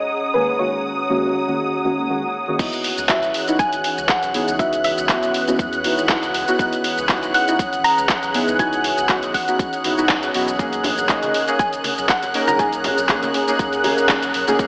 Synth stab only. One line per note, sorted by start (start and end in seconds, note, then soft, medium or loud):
0.34 0.56 D#3 medium
0.34 0.56 G#3 medium
0.34 0.56 A#3 medium
0.34 0.57 C#4 medium
0.34 0.57 G#4 loud
0.59 1.06 D#3 medium
0.59 1.06 G#3 medium
0.59 1.06 A#3 medium
0.59 1.07 C#4 medium
0.59 1.07 F#4 medium
1.09 1.44 D#3 medium
1.09 1.44 G#3 medium
1.09 1.44 A#3 medium
1.09 1.45 C#4 medium
1.09 1.45 F#4 loud
1.47 1.81 D#3 medium
1.47 1.81 G#3 medium
1.47 1.82 A#3 medium
1.47 1.82 C#4 medium
1.47 1.82 F#4 medium
1.84 2.06 D#3 medium
1.84 2.06 G#3 medium
1.84 2.06 A#3 medium
1.84 2.07 C#4 medium
1.84 2.07 F#4 medium
2.09 2.22 D#3 medium
2.09 2.22 G#3 medium
2.09 2.22 A#3 medium
2.09 2.22 C#4 medium
2.09 2.22 F#4 medium
2.47 2.57 D#3 medium
2.47 2.57 G#3 medium
2.47 2.58 A#3 medium
2.47 2.58 C#4 medium
2.47 2.58 F#4 medium
2.59 3.06 B3 loud
2.59 3.06 D#4 medium
2.59 3.07 E4 medium
2.59 3.07 F#4 loud
3.09 3.44 B3 medium
3.09 3.44 C#4 medium
3.09 3.44 E4 medium
3.09 3.45 F#4 loud
3.47 3.59 B3 medium
3.47 3.59 D#4 medium
3.47 3.59 E4 medium
3.47 3.59 F#4 loud
4.34 4.56 B3 loud
4.34 4.56 D#4 medium
4.34 4.56 E4 medium
4.34 4.57 G#4 loud
4.59 5.06 B3 medium
4.59 5.06 D#4 medium
4.59 5.06 E4 medium
4.59 5.07 F#4 loud
5.09 5.44 B3 medium
5.09 5.44 C#4 medium
5.09 5.44 E4 medium
5.09 5.45 F#4 loud
5.47 5.81 B3 medium
5.47 5.81 C#4 medium
5.47 5.81 E4 medium
5.47 5.82 F#4 loud
5.84 6.06 B3 medium
5.84 6.06 D#4 medium
5.84 6.06 E4 medium
5.84 6.07 F#4 medium
6.09 6.22 B3 medium
6.09 6.22 D#4 medium
6.09 6.22 E4 medium
6.09 6.22 F#4 medium
6.47 6.57 B3 medium
6.47 6.57 D#4 medium
6.47 6.58 E4 medium
6.47 6.58 F#4 medium
6.59 7.06 B3 loud
6.59 7.06 D#4 medium
6.59 7.07 E4 medium
6.59 7.07 F#4 loud
7.09 7.44 B3 medium
7.09 7.44 D#4 medium
7.09 7.44 E4 medium
7.09 7.45 F#4 loud
7.47 7.59 B3 medium
7.47 7.59 D#4 medium
7.47 7.59 E4 medium
7.47 7.59 F#4 loud
8.34 8.56 B3 loud
8.34 8.56 D#4 medium
8.34 8.57 E4 medium
8.34 8.57 G#4 loud
8.59 9.06 B3 medium
8.59 9.06 D#4 medium
8.59 9.07 E4 medium
8.59 9.07 F#4 loud
9.09 9.44 B3 medium
9.09 9.44 D#4 medium
9.09 9.44 E4 medium
9.09 9.45 F#4 loud
9.47 9.81 B3 medium
9.47 9.81 D#4 medium
9.47 9.82 E4 medium
9.47 9.82 F#4 medium
9.84 9.94 B3 medium
9.84 9.94 D#4 medium
9.84 9.95 E4 medium
9.84 9.95 F#4 medium
9.97 10.31 B3 medium
9.97 10.31 D#4 medium
9.97 10.32 E4 medium
9.97 10.32 F#4 loud
10.34 10.47 B3 medium
10.34 10.47 D#4 medium
10.34 10.47 E4 medium
10.34 10.47 F#4 medium
10.59 11.06 A#3 loud
10.59 11.06 C#4 medium
10.59 11.07 D#4 medium
10.59 11.07 G#4 loud
11.09 11.44 A#3 medium
11.09 11.44 C#4 medium
11.09 11.44 D#4 medium
11.09 11.45 G#4 loud
11.48 11.59 A#3 medium
11.48 11.59 C#4 medium
11.48 11.59 D#4 medium
11.48 11.59 G#4 medium
12.34 12.56 A#3 loud
12.34 12.56 C#4 medium
12.34 12.57 D#4 medium
12.34 12.57 A#4 loud
12.59 13.06 A#3 medium
12.59 13.06 C#4 medium
12.59 13.07 D#4 medium
12.59 13.07 G#4 loud
13.09 13.44 A#3 medium
13.09 13.44 C#4 medium
13.09 13.44 D#4 medium
13.09 13.45 G#4 loud
13.47 13.81 A#3 medium
13.47 13.81 C#4 medium
13.47 13.81 D#4 medium
13.47 13.82 G#4 medium
13.84 14.06 A#3 medium
13.84 14.06 C#4 medium
13.84 14.07 D#4 medium
13.84 14.07 G#4 medium
14.09 14.22 A#3 medium
14.09 14.22 C#4 medium
14.09 14.22 D#4 medium
14.09 14.22 G#4 medium
14.47 14.57 A#3 medium
14.47 14.57 C#4 medium
14.47 14.58 D#4 medium
14.47 14.58 G#4 medium
14.59 14.67 A#3 loud
14.59 14.67 C#4 medium
14.59 14.67 D#4 medium
14.59 14.67 G#4 loud